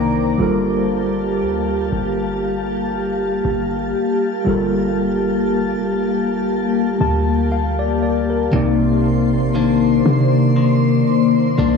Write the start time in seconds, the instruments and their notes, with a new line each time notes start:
Already playing: 808-style bass C2, tine electric piano C3 A#3 D#4 A#4 D5 F5 G5 A#5, clean electric guitar C3 D#3 A#3 D4, ambient pad C5 D5 A#5 D6
0.38 808-style bass G1, tine electric piano G3 F4 A4, ambient pad A#3 G4 F5 A5
0.42 tine electric piano A#4
1.42 808-style bass D2
1.92 808-style bass G1
3.45 808-style bass G1
4.45 808-style bass G1, tine electric piano G3 F4 A4
4.49 tine electric piano A#4
5.76 808-style bass F1
6.38 808-style bass G1
7.01 808-style bass D2, tine electric piano A5
7.52 tine electric piano F5
7.79 tine electric piano D5
8.03 tine electric piano D5
8.30 tine electric piano A#4
8.51 808-style bass C2, tine electric piano C3 A#3 D#4, clean electric guitar C3, ambient pad C5 D5 C6
8.56 tine electric piano D5
9.32 808-style bass A#1
9.55 clean electric guitar D#3 A#3 D4
10.06 808-style bass C3
10.56 clean electric guitar D#3
11.58 808-style bass C2, clean electric guitar D#3 A#3 D4